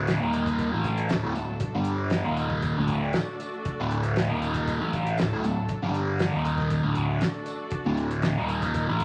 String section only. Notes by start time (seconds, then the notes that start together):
Already playing: A3 D4 F#4 A4 D5
0.22 D#3 A#3 D#4 A#4 D#5
0.70 F#3 A3 D4 F#4 A4
1.76 D3 G3 G4 D5
2.24 D#3 A#3 D#4 A#4 D#5
2.76 A3 D4 F#4 A4 D5
4.28 D#3 A#3 D#4 A#4 D#5
4.80 F#3 A3 D4 F#4 A4
5.83 D3 G3 G4 D5
6.33 D#3 A#3 D#4 A#4 D#5
6.84 A3 D4 F#4 A4 D5
8.37 D#3 A#3 D#4 A#4 D#5
8.87 F#3 A3 D4 F#4 A4